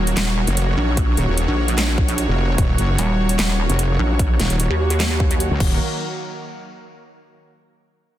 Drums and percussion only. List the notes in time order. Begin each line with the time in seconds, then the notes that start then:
0.07 closed hi-hat
0.17 snare, clap, closed hi-hat
0.47 closed hi-hat
0.57 closed hi-hat
0.97 kick, closed hi-hat
1.17 closed hi-hat
1.38 closed hi-hat
1.68 closed hi-hat
1.78 snare, clap, closed hi-hat
1.98 kick
2.08 closed hi-hat
2.18 closed hi-hat
2.58 kick, closed hi-hat
2.78 closed hi-hat
2.98 closed hi-hat
3.29 closed hi-hat
3.39 snare, clap, closed hi-hat
3.70 closed hi-hat
3.79 closed hi-hat
4.19 kick, closed hi-hat
4.40 snare, closed hi-hat
4.50 closed hi-hat
4.60 closed hi-hat
4.90 closed hi-hat
5.00 snare, clap, closed hi-hat
5.20 kick
5.31 closed hi-hat
5.40 closed hi-hat
5.60 kick, crash